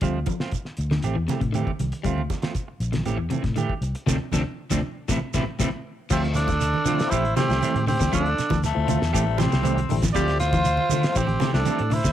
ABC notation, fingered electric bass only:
X:1
M:4/4
L:1/16
Q:1/4=119
K:Dm
V:1 name="Fingered electric bass" clef=bass
D,,2 z4 D,,2 A,,, E,, z A,,2 z C,, z | D,,2 z4 B,,,2 A,,, E,, z A,,2 z C,, z | D,, z D,, z2 D,, z2 A,,, z A,,, z A,,, z3 | D,,6 D, z A,,,2 z C,, z A,,2 D,, |
D,,2 z D,,2 D,, D,, E,, A,,,3 C,,3 A,,,2 | D,,6 D, z A,,,2 z C,, z A,,2 D,, |]